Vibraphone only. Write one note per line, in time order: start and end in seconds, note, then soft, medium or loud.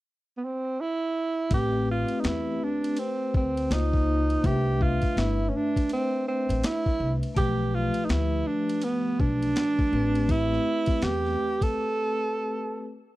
1.49 3.66 A3 medium
1.49 3.66 C4 medium
1.49 3.67 G4 medium
1.49 3.68 B4 medium
3.69 4.43 A#3 medium
3.69 4.44 D#4 soft
3.69 4.44 F4 medium
3.69 4.44 C5 medium
4.42 7.31 A3 medium
4.42 7.32 D4 medium
4.42 7.33 B4 medium
4.42 7.33 E5 medium
7.35 9.88 F3 medium
7.35 9.88 A3 medium
7.35 9.89 G4 medium
7.35 9.89 B4 medium
9.91 12.80 A3 medium
9.91 12.81 C4 medium
9.91 12.82 G4 medium
9.91 12.82 B4 medium